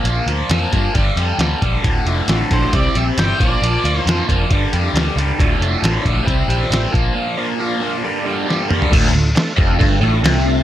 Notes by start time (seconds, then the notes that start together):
0.04 A#1 A#2 F3 A#3, closed hi-hat
0.26 D2 A#2 F3 A#3, closed hi-hat
0.50 F2 A#2 F3 A#3, snare, closed hi-hat
0.72 G2 A#2 F3 A#3, kick, closed hi-hat
0.94 G1 G2 D3 G3, kick, closed hi-hat
1.16 F2 G2 D3 G3, closed hi-hat
1.39 D2 G2 D3 G3, snare, closed hi-hat
1.62 A#1 G2 D3 G3, kick, closed hi-hat
1.82 D1 D2 A2 D3 D4 F4 A4 D5, kick, closed hi-hat
2.05 F1 D2 A2 D3 D4 F4 A4 D5, closed hi-hat
2.27 A1 D2 A2 D3 D4 F4 A4 D5, snare, closed hi-hat
2.51 A#1 D2 A2 D3 D4 F4 A4 C5 D5, kick, closed hi-hat
2.73 C2 C3 G3 C4 E4 G4 C5 D5, kick, closed hi-hat
2.95 A#1 C3 G3 C4 E4 G4 C5 E5, closed hi-hat
3.18 G1 C3 G3 C4 E4 G4 C5 G5, snare, closed hi-hat
3.39 A#1 A#2 F3 A#3 D4 F4 A#4 D5, kick, closed hi-hat
3.62 A#1 A#2 F3 A#3, closed hi-hat
3.84 D2 A#2 F3 A#3 D4 F4 A#4 D5, closed hi-hat
4.00 D#4 C5
4.05 F2 A#2 F3 A#3 D4 F4 A#4 F5, snare, closed hi-hat
4.29 F1 A#2 F3 A#3 D4 F4 A#4 D5, kick, closed hi-hat
4.50 G1 G2 D3 G3 D4 G4 A#4 D5, kick, closed hi-hat
4.72 F2 G2 D3 G3 D4 G4 A#4 D5, closed hi-hat
4.93 D2 G2 D3 G3 D4 G4 A#4 F5, closed hi-hat
4.97 snare
5.16 C#2 G2 D3 G3 D4 G4 A#4 D5, closed hi-hat
5.38 D1 D2 A2 D3 D4 F4 A4 D5, kick, closed hi-hat
5.60 F1 D2 A2 D3 D4 F4 A4 D5, closed hi-hat
5.79 A1 D2 A2 D4 F4 A4 C5
5.84 D3, snare, closed hi-hat
6.02 D2 A2 D4 F4 A4 D5
6.06 A#1 D3, kick, closed hi-hat
6.23 C3 G3 C4 E4 G4 C5
6.27 C2 C4, kick, closed hi-hat
6.48 A#1 C3 G3 C4 E4 G4 C5, closed hi-hat
6.63 snare
6.69 A1 C3 G3 C4 E4 G4 C5, closed hi-hat
6.73 snare
6.90 A#1 A#2 F3 A#3 D4 F4 A#4, kick
6.95 closed hi-hat
7.14 A#2 F3 A#3
7.36 A#2 F3 A#3 D4 F4 A#4
7.57 A#2 F3 A#3 D4 F4 A#4
7.79 A#2 F3 A#3 D4 F4 A#4
8.01 G2 D3 G3 A#3 D4 G4 A#4
8.23 G2 D3 G3 A#3 D4 G4 A#4
8.44 G2 D3 A#3 D4 G4 C5
8.48 G3, snare
8.68 G2 D3 G3 A#3 D4 G4 A#4, mid tom
8.82 floor tom
8.90 D1 D2 A3 D4 F4 A4, kick, crash
9.12 D1 D2 A3 D4 F4 A4
9.35 A3 D4 F4 A4, muted overdriven electric guitar stroke, muted picked electric bass stroke, snare, crash
9.56 F1 F2 A3 D4 F4 G4, kick
9.78 G1 G2 A3 D4 F4 A4, kick, crash
10.01 A1 A2 A3 D4 F4 A4
10.21 C2 C3 A3 D4 F4 A4, crash
10.26 snare
10.44 A3 D4 F4 A4